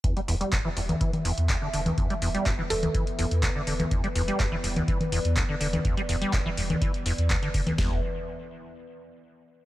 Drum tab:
HH |xxoxx-oxxxoxx-ox|xxoxx-oxxxoxx-ox|xxoxx-oxxxoxx-ox|xxoxx-oxxxoxxxox|
CP |----x-------x---|----x-------x---|----x-------x---|----x-------x---|
SD |----------------|----------------|----------------|----------------|
CG |-------O-O-----O|-------O-------O|-------O-O-----O|-------O-------O|
BD |o---o---o---o---|o---o---o---o---|o---o---o---o---|o---o---o---o-o-|

HH |o---------------|
CP |----------------|
SD |o---------------|
CG |----------------|
BD |o---------------|